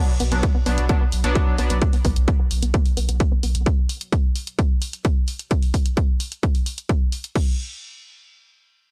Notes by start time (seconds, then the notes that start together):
0.20 B1 B3, open hi-hat
0.32 B1 F#3 B3 D4, closed hi-hat
0.43 kick, closed hi-hat
0.55 B3
0.66 B1 F#3 B3 D4, open hi-hat
0.78 B1, closed hi-hat
0.89 F#3 B3 D4, kick, closed hi-hat
1.01 B3
1.12 B1, open hi-hat
1.24 B1 F#3 B3 D4, closed hi-hat
1.35 B3, kick, closed hi-hat
1.58 B1 F#3 B3 D4, open hi-hat
1.70 B1 B3, closed hi-hat
1.82 kick, closed hi-hat
1.93 B3, open hi-hat
2.05 B1 B3, kick, open hi-hat
2.16 B1, closed hi-hat
2.28 B3, kick, closed hi-hat
2.39 B3
2.51 B1, open hi-hat
2.62 B1 B3, closed hi-hat
2.74 B3, kick, closed hi-hat
2.86 open hi-hat
2.97 B1 B3, open hi-hat
3.09 B1 B3, closed hi-hat
3.20 kick, closed hi-hat
3.32 B3
3.43 B1 B3, open hi-hat
3.55 B1, closed hi-hat
3.66 kick, closed hi-hat
3.89 open hi-hat
4.01 closed hi-hat
4.12 kick, closed hi-hat
4.36 open hi-hat
4.47 closed hi-hat
4.59 kick, closed hi-hat
4.82 open hi-hat
4.93 closed hi-hat
5.05 kick, closed hi-hat
5.28 open hi-hat
5.39 closed hi-hat
5.51 kick, closed hi-hat
5.62 open hi-hat
5.74 kick, open hi-hat
5.86 closed hi-hat
5.97 kick, closed hi-hat
6.20 open hi-hat
6.32 closed hi-hat
6.43 kick, closed hi-hat
6.55 open hi-hat
6.66 open hi-hat
6.78 closed hi-hat
6.89 kick, closed hi-hat
7.12 open hi-hat
7.24 closed hi-hat
7.35 kick, crash